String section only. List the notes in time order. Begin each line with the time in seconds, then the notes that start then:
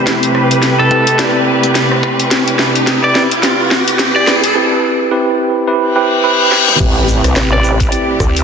Already playing: C3 A3 G4 B4
6.80 C3 A3 G4 B4